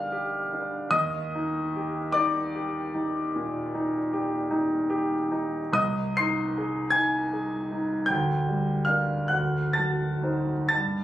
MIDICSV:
0, 0, Header, 1, 2, 480
1, 0, Start_track
1, 0, Tempo, 807537
1, 557, Time_signature, 12, 3, 24, 8
1, 1986, Tempo, 775194
1, 2946, Tempo, 874636
1, 3426, Tempo, 811908
1, 3906, Tempo, 768246
1, 5346, Tempo, 882353
1, 5826, Tempo, 963082
1, 6460, End_track
2, 0, Start_track
2, 0, Title_t, "Grand piano"
2, 0, Program_c, 0, 0
2, 0, Control_c, 0, 64, 127
2, 0, Note_on_c, 0, 50, 40
2, 0, Note_on_c, 0, 62, 45
2, 0, Note_on_c, 0, 67, 54
2, 0, Note_on_c, 0, 77, 60
2, 0, Note_on_c, 0, 79, 66
2, 0, Note_on_c, 0, 89, 84
2, 0, Note_on_c, 0, 91, 86
2, 72, Note_off_c, 0, 67, 0
2, 72, Note_on_c, 0, 67, 51
2, 219, Note_off_c, 0, 62, 0
2, 317, Note_on_c, 0, 62, 43
2, 462, Note_off_c, 0, 67, 0
2, 532, Note_off_c, 0, 77, 0
2, 538, Note_on_c, 0, 39, 59
2, 539, Note_on_c, 0, 87, 91
2, 548, Note_on_c, 0, 75, 72
2, 553, Note_off_c, 0, 89, 0
2, 560, Note_off_c, 0, 62, 0
2, 567, Control_c, 0, 64, 0
2, 568, Note_off_c, 0, 79, 0
2, 569, Note_off_c, 0, 50, 0
2, 570, Note_off_c, 0, 91, 0
2, 648, Control_c, 0, 64, 127
2, 804, Note_on_c, 0, 63, 48
2, 1046, Note_on_c, 0, 67, 52
2, 1182, Note_off_c, 0, 63, 0
2, 1246, Note_off_c, 0, 75, 0
2, 1263, Note_on_c, 0, 86, 89
2, 1265, Note_off_c, 0, 87, 0
2, 1270, Note_on_c, 0, 74, 72
2, 1284, Note_on_c, 0, 63, 56
2, 1421, Note_off_c, 0, 67, 0
2, 1515, Note_on_c, 0, 67, 46
2, 1655, Note_off_c, 0, 63, 0
2, 1751, Note_on_c, 0, 63, 41
2, 1892, Note_off_c, 0, 67, 0
2, 1953, Note_off_c, 0, 39, 0
2, 1996, Note_on_c, 0, 46, 46
2, 2139, Note_off_c, 0, 63, 0
2, 2236, Note_on_c, 0, 63, 43
2, 2382, Note_off_c, 0, 46, 0
2, 2476, Note_on_c, 0, 67, 51
2, 2611, Note_off_c, 0, 63, 0
2, 2708, Note_on_c, 0, 63, 46
2, 2850, Note_off_c, 0, 67, 0
2, 2950, Note_on_c, 0, 67, 50
2, 3084, Note_off_c, 0, 63, 0
2, 3179, Note_on_c, 0, 63, 43
2, 3327, Note_off_c, 0, 67, 0
2, 3402, Note_off_c, 0, 74, 0
2, 3404, Note_on_c, 0, 36, 54
2, 3408, Note_on_c, 0, 87, 82
2, 3415, Note_on_c, 0, 75, 69
2, 3420, Note_off_c, 0, 86, 0
2, 3427, Note_off_c, 0, 63, 0
2, 3439, Control_c, 0, 64, 0
2, 3532, Control_c, 0, 64, 127
2, 3655, Note_off_c, 0, 75, 0
2, 3664, Note_on_c, 0, 96, 93
2, 3667, Note_on_c, 0, 84, 59
2, 3670, Note_off_c, 0, 87, 0
2, 3682, Note_on_c, 0, 63, 47
2, 3904, Note_on_c, 0, 68, 44
2, 4047, Note_off_c, 0, 63, 0
2, 4108, Note_off_c, 0, 84, 0
2, 4110, Note_on_c, 0, 92, 89
2, 4119, Note_on_c, 0, 80, 64
2, 4131, Note_off_c, 0, 96, 0
2, 4134, Note_on_c, 0, 63, 50
2, 4281, Note_off_c, 0, 68, 0
2, 4374, Note_on_c, 0, 68, 35
2, 4518, Note_off_c, 0, 63, 0
2, 4619, Note_on_c, 0, 63, 41
2, 4756, Note_off_c, 0, 68, 0
2, 4816, Note_off_c, 0, 36, 0
2, 4818, Note_off_c, 0, 80, 0
2, 4832, Note_on_c, 0, 91, 73
2, 4839, Note_off_c, 0, 92, 0
2, 4840, Note_on_c, 0, 79, 52
2, 4855, Note_off_c, 0, 63, 0
2, 4855, Note_on_c, 0, 38, 52
2, 4864, Control_c, 0, 64, 0
2, 4972, Control_c, 0, 64, 127
2, 5098, Note_on_c, 0, 55, 33
2, 5313, Note_off_c, 0, 79, 0
2, 5324, Note_on_c, 0, 89, 68
2, 5330, Note_on_c, 0, 77, 53
2, 5334, Note_off_c, 0, 91, 0
2, 5346, Note_on_c, 0, 62, 37
2, 5348, Note_on_c, 0, 70, 42
2, 5485, Note_off_c, 0, 55, 0
2, 5556, Note_off_c, 0, 77, 0
2, 5558, Note_off_c, 0, 62, 0
2, 5559, Note_off_c, 0, 70, 0
2, 5560, Note_off_c, 0, 38, 0
2, 5562, Note_on_c, 0, 90, 60
2, 5569, Note_on_c, 0, 78, 44
2, 5570, Note_off_c, 0, 89, 0
2, 5581, Note_on_c, 0, 38, 42
2, 5590, Control_c, 0, 64, 0
2, 5705, Control_c, 0, 64, 127
2, 5803, Note_off_c, 0, 78, 0
2, 5809, Note_on_c, 0, 93, 66
2, 5814, Note_on_c, 0, 81, 49
2, 5817, Note_off_c, 0, 90, 0
2, 5829, Note_on_c, 0, 54, 33
2, 6058, Note_on_c, 0, 63, 30
2, 6061, Note_on_c, 0, 72, 33
2, 6203, Note_off_c, 0, 54, 0
2, 6275, Note_off_c, 0, 81, 0
2, 6277, Note_off_c, 0, 93, 0
2, 6280, Note_off_c, 0, 63, 0
2, 6281, Note_off_c, 0, 38, 0
2, 6281, Note_off_c, 0, 72, 0
2, 6285, Note_on_c, 0, 93, 76
2, 6293, Note_on_c, 0, 81, 57
2, 6306, Note_on_c, 0, 43, 46
2, 6312, Control_c, 0, 64, 0
2, 6415, Control_c, 0, 64, 127
2, 6460, Note_off_c, 0, 43, 0
2, 6460, Note_off_c, 0, 81, 0
2, 6460, Note_off_c, 0, 93, 0
2, 6460, End_track
0, 0, End_of_file